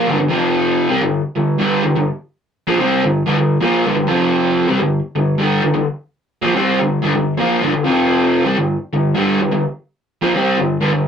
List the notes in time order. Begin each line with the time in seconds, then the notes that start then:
0.07 G2 D3
0.19 G2 D3
0.29 F2 C3 F3
0.89 C3 G3
1.01 G2 D3
1.36 G2 D3
1.59 G2 D3 G3
1.84 G2 D3
1.96 G2 D3
2.67 A#2 F3
2.79 C3 G3 C4
3.04 G2 D3
3.26 G2 D3
3.39 G2 D3
3.61 A#2 F3 A#3
3.85 G2 D3
3.97 G2 D3
4.07 F2 C3 F3
4.68 C3 G3
4.80 G2 D3
5.16 G2 D3
5.38 G2 D3 G3
5.62 G2 D3
5.74 G2 D3
6.42 A#2 F3
6.55 C3 G3 C4
6.79 G2 D3
7.02 G2 D3
7.15 G2 D3
7.37 A#2 F3 A#3
7.61 G2 D3
7.74 G2 D3
7.84 F2 C3 F3
8.44 C3 G3
8.56 G2 D3
8.93 G2 D3
9.15 G2 D3 G3
9.40 G2 D3
9.51 G2 D3
10.22 A#2 F3
10.35 C3 G3 C4
10.57 G2 D3
10.81 G2 D3
10.92 G2 D3